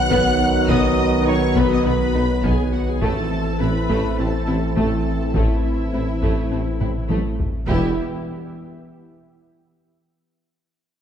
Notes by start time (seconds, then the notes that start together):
Already playing: B1 D#3 F#3 B3 F#4 B4 F#5 F#6
0.11 B1 B2 B3, taiko
0.68 B1 B2 B3 D#5 D#6, taiko
1.27 B1 B2 B3 D#4 C#5 C#6
1.56 B1 B2 B3 B4 B5, taiko
1.71 D#5 D#6
1.85 B1 B2 B3 D#4 B4 B5
2.14 B1 B2 B3 D#4
2.44 B1 B2 B3 G#4 G#5, taiko
2.73 F#4 F#5
2.88 G#4 G#5
3.01 A1 A2 E3 A3 C4 E4 A4 E5 A5, taiko
3.60 A1 A2 C4 E4 B4 B5
3.89 A1 A2 A3, taiko
4.18 A1 A2 A3 C4 A4 A5
4.48 A1 A2 C4 E4
4.77 A1 A2 A3 A4 A5, taiko
5.35 A1 A2 A3 E4 E5, taiko
5.93 A1 A2 C4 E4
6.23 A1 A2 A3, taiko
6.51 A1 A2 A3 C4
6.81 A1 A2 C4 E4, taiko mid
7.09 A1 A2 A3, taiko high
7.40 taiko low
7.67 E1 E2 E3 G3 B3 E4 G4 E5, taiko